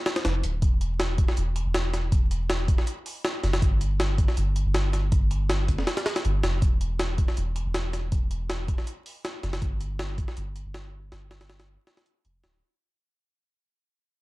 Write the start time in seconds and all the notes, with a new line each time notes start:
0.06 snare, closed hi-hat
0.16 snare, closed hi-hat
0.25 F1, snare, closed hi-hat
0.43 D1, closed hi-hat
0.62 E1, kick, closed hi-hat
0.81 closed hi-hat
1.00 snare, closed hi-hat
1.18 kick, closed hi-hat
1.28 snare
1.37 E1, closed hi-hat
1.56 closed hi-hat
1.66 E1
1.74 snare, closed hi-hat
1.94 snare, closed hi-hat
2.12 E1, kick, closed hi-hat
2.31 closed hi-hat
2.50 snare, closed hi-hat
2.68 kick, closed hi-hat
2.78 snare
2.87 closed hi-hat
3.06 open hi-hat
3.25 snare, closed hi-hat
3.43 F#1, snare, closed hi-hat
3.53 snare, closed hi-hat
3.62 G1, kick, closed hi-hat
3.81 closed hi-hat
4.00 snare, closed hi-hat
4.18 kick, closed hi-hat
4.28 snare
4.37 G1, closed hi-hat
4.56 closed hi-hat
4.66 G1
4.75 snare, closed hi-hat
4.93 snare, closed hi-hat
5.12 G1, kick, closed hi-hat
5.31 closed hi-hat
5.50 snare, closed hi-hat
5.68 kick, closed hi-hat
5.78 snare
5.87 snare, closed hi-hat
5.97 snare, closed hi-hat
6.06 snare, closed hi-hat
6.16 snare, closed hi-hat
6.25 G1, closed hi-hat
6.43 F1, snare, closed hi-hat
6.62 E1, kick, closed hi-hat
6.81 closed hi-hat
7.00 snare, closed hi-hat
7.18 kick, closed hi-hat
7.28 snare
7.37 E1, closed hi-hat
7.56 closed hi-hat
7.66 E1
7.74 snare, closed hi-hat
7.93 snare, closed hi-hat
8.12 E1, kick, closed hi-hat
8.31 closed hi-hat
8.50 snare, closed hi-hat
8.68 kick, closed hi-hat
8.78 snare
8.87 closed hi-hat
9.06 open hi-hat
9.25 snare, closed hi-hat
9.43 F#1, snare, closed hi-hat
9.53 snare, closed hi-hat
9.62 G1, kick, closed hi-hat
9.81 closed hi-hat
9.99 snare, closed hi-hat
10.18 kick, closed hi-hat
10.28 snare
10.37 G1, closed hi-hat
10.56 closed hi-hat
10.66 G1
10.74 snare, closed hi-hat
11.12 G1, snare, closed hi-hat
11.31 snare, closed hi-hat
11.41 snare, closed hi-hat
11.50 snare, closed hi-hat
11.60 snare, closed hi-hat
11.87 snare, closed hi-hat
11.97 snare, closed hi-hat
12.06 closed hi-hat
12.25 F1, closed hi-hat
12.44 D1, snare, closed hi-hat